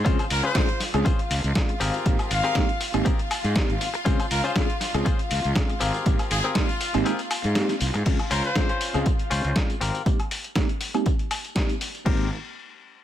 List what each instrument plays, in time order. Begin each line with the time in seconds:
0.05 fingered electric bass C#2, tine electric piano G#3 C4 C#4 F4 G#4, clean electric guitar C#4 F4 G#4 C5, string section F4 F5, kick, closed hi-hat, tambourine
0.19 closed hi-hat, tambourine, high woodblock
0.30 fingered electric bass C#2, trumpet section A#4, open hi-hat, tambourine
0.43 clean electric guitar C#4 F4 G#4 C5, trumpet section C5, closed hi-hat, tambourine
0.55 tine electric piano G#3 C4 C#4 F4 G#4, kick, snare, closed hi-hat, tambourine
0.69 closed hi-hat
0.80 muted clean electric guitar stroke, snare, open hi-hat, tambourine
0.94 fingered electric bass C#2, tine electric piano G#3 C4 C#4 F4 G#4, closed hi-hat, tambourine, high woodblock
1.05 clean electric guitar C#4 F4 G#4 C5, kick, closed hi-hat, tambourine
1.19 closed hi-hat
1.30 fingered electric bass C#2, muted clean electric guitar stroke, open hi-hat, tambourine
1.44 fingered electric bass C#2, closed hi-hat, tambourine
1.55 tine electric piano G#3 C4 C#4 F4 G#4, kick, snare, closed hi-hat, tambourine
1.69 muted clean electric guitar stroke, closed hi-hat
1.80 fingered electric bass G#1, clean electric guitar C4 G4 G#4 A#4, open hi-hat, tambourine
1.94 closed hi-hat, tambourine
2.06 fingered electric bass G#1, tine electric piano G#3 A#3 C4 D#4 G4, kick, closed hi-hat, tambourine
2.19 closed hi-hat, tambourine, high woodblock
2.31 fingered electric bass G#1, trumpet section F5, open hi-hat, tambourine
2.43 clean electric guitar C4 G4 G#4 A#4, closed hi-hat, tambourine
2.55 tine electric piano G#3 A#3 C4 D#4 G4, kick, snare, closed hi-hat, tambourine
2.69 closed hi-hat
2.80 muted clean electric guitar stroke, open hi-hat, tambourine
2.94 fingered electric bass G#1, tine electric piano G#3 A#3 C4 D#4 G4, closed hi-hat, tambourine, high woodblock
3.05 clean electric guitar C4 G4 G#4 A#4, kick, closed hi-hat, tambourine
3.19 closed hi-hat
3.30 muted clean electric guitar stroke, open hi-hat, tambourine, high woodblock
3.44 fingered electric bass G#2, closed hi-hat, tambourine
3.56 tine electric piano G#3 A#3 C4 D#4 G4, kick, snare, closed hi-hat, tambourine
3.69 fingered electric bass G#1, muted clean electric guitar stroke, closed hi-hat
3.81 open hi-hat, tambourine
3.94 muted clean electric guitar stroke, closed hi-hat, tambourine
4.05 fingered electric bass C#2, tine electric piano G#3 C4 C#4 F4 G#4, clean electric guitar C#4 F4 G#4 C5, kick, closed hi-hat, tambourine
4.20 closed hi-hat, tambourine, high woodblock
4.31 fingered electric bass C#2, trumpet section A#4, open hi-hat, tambourine
4.44 clean electric guitar C#4 F4 G#4 C5, closed hi-hat, tambourine
4.56 tine electric piano G#3 C4 C#4 F4 G#4, trumpet section F4, kick, snare, closed hi-hat, tambourine
4.70 closed hi-hat
4.80 muted clean electric guitar stroke, snare, open hi-hat, tambourine
4.94 fingered electric bass C#2, tine electric piano G#3 C4 C#4 F4 G#4, closed hi-hat, tambourine, high woodblock
5.05 clean electric guitar C#4 F4 G#4 C5, kick, closed hi-hat, tambourine
5.19 closed hi-hat
5.30 fingered electric bass C#2, muted clean electric guitar stroke, open hi-hat, tambourine
5.44 fingered electric bass C#2, closed hi-hat, tambourine
5.56 tine electric piano G#3 C4 C#4 F4 G#4, kick, snare, closed hi-hat, tambourine
5.69 muted clean electric guitar stroke, closed hi-hat
5.80 fingered electric bass G#1, clean electric guitar C4 G4 G#4 A#4, open hi-hat, tambourine
5.94 closed hi-hat, tambourine
6.06 fingered electric bass G#1, tine electric piano G#3 A#3 C4 D#4 G4, kick, closed hi-hat, tambourine
6.19 closed hi-hat, tambourine, high woodblock
6.31 fingered electric bass G#1, trumpet section G#4, open hi-hat, tambourine
6.44 clean electric guitar C4 G4 G#4 A#4, closed hi-hat, tambourine
6.55 tine electric piano G#3 A#3 C4 D#4 G4, trumpet section F4, kick, snare, closed hi-hat, tambourine
6.69 closed hi-hat, tambourine
6.80 muted clean electric guitar stroke, open hi-hat, tambourine
6.94 fingered electric bass G#1, tine electric piano G#3 A#3 C4 D#4 G4, closed hi-hat, tambourine, high woodblock
7.05 clean electric guitar C4 G4 G#4 A#4, closed hi-hat, tambourine
7.19 closed hi-hat, tambourine
7.31 muted clean electric guitar stroke, open hi-hat, tambourine, high woodblock
7.44 fingered electric bass G#2, closed hi-hat, tambourine
7.55 tine electric piano G#3 A#3 C4 D#4 G4, snare, closed hi-hat, tambourine
7.69 muted clean electric guitar stroke, snare, closed hi-hat, tambourine
7.81 fingered electric bass C2, open hi-hat, tambourine
7.94 fingered electric bass G#2, muted clean electric guitar stroke, closed hi-hat, tambourine
8.06 fingered electric bass C#2, tine electric piano G#3 C4 C#4 F4 G#4, kick, closed hi-hat, crash, tambourine
8.19 closed hi-hat, high woodblock
8.31 fingered electric bass C#2, clean electric guitar C#4 F4 C5, trumpet section A#4, open hi-hat, tambourine
8.44 trumpet section C5, closed hi-hat, tambourine
8.56 tine electric piano G#3 C4 C#4 F4 G#4, kick, snare, closed hi-hat, tambourine
8.69 clean electric guitar C#4 F4 C5, closed hi-hat
8.81 open hi-hat, tambourine
8.94 fingered electric bass C#2, tine electric piano G#3 C4 C#4 F4 G#4, closed hi-hat, tambourine, high woodblock
9.06 kick, closed hi-hat, tambourine
9.19 closed hi-hat
9.30 fingered electric bass C#2, clean electric guitar C#4 F4 C5, open hi-hat, tambourine
9.44 fingered electric bass C#2, closed hi-hat, tambourine
9.56 tine electric piano G#3 C4 C#4 F4 G#4, kick, snare, closed hi-hat, tambourine
9.70 closed hi-hat, tambourine
9.81 fingered electric bass G#1, clean electric guitar C4 G4 A#4, open hi-hat, tambourine
9.95 closed hi-hat, tambourine
10.06 tine electric piano G#3 A#3 C4 D#4 G4, kick, closed hi-hat, tambourine
10.20 closed hi-hat, high woodblock
10.31 open hi-hat, tambourine
10.44 closed hi-hat, tambourine
10.56 tine electric piano G#3 A#3 C4 D#4 G4, kick, snare, closed hi-hat, tambourine
10.69 closed hi-hat
10.81 open hi-hat, tambourine
10.94 tine electric piano G#3 A#3 C4 D#4 G4, closed hi-hat, tambourine, high woodblock
11.06 kick, closed hi-hat, tambourine
11.19 closed hi-hat
11.31 open hi-hat, tambourine, high woodblock
11.45 closed hi-hat, tambourine
11.55 tine electric piano G#3 A#3 C4 D#4 G4, kick, snare, closed hi-hat, tambourine
11.69 closed hi-hat, tambourine
11.81 open hi-hat, tambourine
11.95 closed hi-hat, tambourine
12.05 fingered electric bass G#1, tine electric piano G#3 A#3 C4 D#4 G4, clean electric guitar C4 G4 A#4, kick, crash